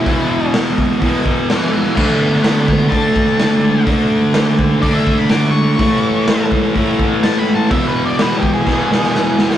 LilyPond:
<<
  \new Staff \with { instrumentName = "Lead electric guitar" } { \time 4/4 \key e \mixolydian \tempo 4 = 125 e'4 r2 <e'' gis''>8 <e'' gis''>8 | <e'' gis''>8 <fis'' b''>8 <fis'' b''>8 <fis'' b''>8 a''2 | r2 d''16 e''8 b''16 d'''8 cis'''8~ | cis'''4. r4. \tuplet 3/2 { a''8 b''8 a''8 } |
\tuplet 3/2 { e''8 b'8 d''8 b'8 g'8 gis'8~ } gis'2 | }
  \new Staff \with { instrumentName = "Distorted electric guitar" } { \clef bass \time 4/4 \key e \mixolydian <e, b, e>2 <e, b, e>2 | <d a d'>2 <d a d'>2 | <d a d'>2 <d a d'>2 | <a, e a>2 <a, e a>2 |
<e, b, e>2 <e, b, e>2 | }
  \new DrumStaff \with { instrumentName = "Drums" } \drummode { \time 4/4 <hho bd>4 <hho sn>8 bd8 <hho bd>8 bd8 <hho sn>4 | <cymc bd>8. sn16 <hho sn>8 bd8 <hho bd>8 bd8 <hho sn>4 | <hho bd>4 <hho sn>8 bd8 <hho bd>8 bd8 <hho sn>4 | <hho bd>4 <hho sn>8 bd8 <hho bd>8 bd8 <hho sn>4 |
<hho bd>4 <hho sn>8 bd8 <bd sn>8 sn16 sn16 sn8 sn16 sn16 | }
>>